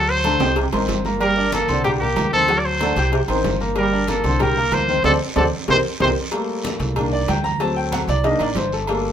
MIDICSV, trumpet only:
0, 0, Header, 1, 2, 480
1, 0, Start_track
1, 0, Tempo, 320000
1, 1803, Time_signature, 4, 2, 24, 8
1, 13683, End_track
2, 0, Start_track
2, 0, Title_t, "Trumpet"
2, 0, Program_c, 0, 56
2, 0, Note_on_c, 0, 69, 102
2, 140, Note_on_c, 0, 72, 115
2, 163, Note_off_c, 0, 69, 0
2, 852, Note_off_c, 0, 72, 0
2, 1813, Note_on_c, 0, 70, 98
2, 2255, Note_off_c, 0, 70, 0
2, 2299, Note_on_c, 0, 69, 82
2, 2738, Note_off_c, 0, 69, 0
2, 2755, Note_on_c, 0, 67, 94
2, 2865, Note_off_c, 0, 67, 0
2, 2985, Note_on_c, 0, 67, 91
2, 3440, Note_off_c, 0, 67, 0
2, 3489, Note_on_c, 0, 69, 107
2, 3876, Note_on_c, 0, 74, 73
2, 3899, Note_off_c, 0, 69, 0
2, 3971, Note_on_c, 0, 72, 106
2, 3994, Note_off_c, 0, 74, 0
2, 4687, Note_off_c, 0, 72, 0
2, 5660, Note_on_c, 0, 70, 83
2, 6099, Note_off_c, 0, 70, 0
2, 6147, Note_on_c, 0, 69, 80
2, 6620, Note_on_c, 0, 70, 94
2, 6642, Note_off_c, 0, 69, 0
2, 7104, Note_on_c, 0, 72, 102
2, 7126, Note_off_c, 0, 70, 0
2, 7565, Note_off_c, 0, 72, 0
2, 7574, Note_on_c, 0, 69, 100
2, 7686, Note_off_c, 0, 69, 0
2, 8048, Note_on_c, 0, 69, 75
2, 8162, Note_off_c, 0, 69, 0
2, 8548, Note_on_c, 0, 72, 97
2, 8655, Note_off_c, 0, 72, 0
2, 9021, Note_on_c, 0, 72, 86
2, 9130, Note_off_c, 0, 72, 0
2, 13683, End_track
0, 0, End_of_file